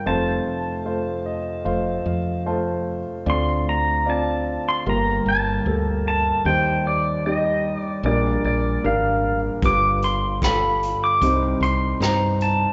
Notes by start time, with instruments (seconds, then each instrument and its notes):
0.06 grand piano F1 F2 A3 F4 C5, fretless electric bass F1, pedal steel guitar A5
0.85 grand piano A3 F4 C5
1.26 grand piano D#5
1.64 fretless electric bass F1, grand piano A3 F4 C5 F5
2.06 fretless electric bass F2, grand piano F5
2.46 grand piano A3 F4 C5 A5
3.26 grand piano D2 D3 C4 F4 D5, fretless electric bass D2, pedal steel guitar C6
3.69 pedal steel guitar A#5
4.06 grand piano C4 F4 D5
4.10 pedal steel guitar A5
4.69 pedal steel guitar C6
4.86 fretless electric bass G1, grand piano G1 G2 A#3 G4 A#4, pedal steel guitar A#5
5.26 fretless electric bass G1, pedal steel guitar A5
5.66 fretless electric bass D2, grand piano G4 A4 A#4
6.08 pedal steel guitar A5
6.45 fretless electric bass D#2, grand piano D#2 D#3 G3 D#4 C5, pedal steel guitar G5
6.87 pedal steel guitar D5
7.26 grand piano G3 D#4 G4, pedal steel guitar D#5
7.77 pedal steel guitar D5
8.03 fretless electric bass A#1, grand piano A#1 A#2 G3 D4 A#4, pedal steel guitar D5
8.44 fretless electric bass A#1, pedal steel guitar D5
8.84 fretless electric bass G#1, grand piano G3 D4 A#4, pedal steel guitar F5
9.62 fretless electric bass G1, grand piano G1 G2 G3 F4 B4, pedal steel guitar D6, kick, closed hi-hat
10.02 pedal steel guitar C6, closed hi-hat
10.42 grand piano G3 F4 A4, pedal steel guitar B5, kick, cross-stick, closed hi-hat
10.83 closed hi-hat
11.04 pedal steel guitar D6
11.21 fretless electric bass C2, grand piano C2 C3 G3 D#4 C5, closed hi-hat
11.60 fretless electric bass C2, pedal steel guitar C6, closed hi-hat
12.00 fretless electric bass G2, grand piano G3 D#4 C5, pedal steel guitar A#5, cross-stick, closed hi-hat
12.41 pedal steel guitar A5, closed hi-hat